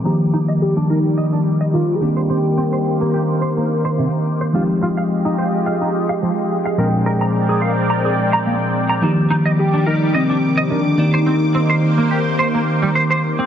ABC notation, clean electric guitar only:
X:1
M:4/4
L:1/16
Q:"Swing 16ths" 1/4=107
K:Cm
V:1 name="Clean electric guitar"
E z E e z D B z e D z e E, z2 c | C z C c z B, G z c B, z c C, z2 c | F z F f z E c z f E z f F, z2 f | B z B b z A f z b A z b B, z2 b |
E z E e z D B z e D z e E, z2 c | C z C c z B, G z c B, z G, c c z C |]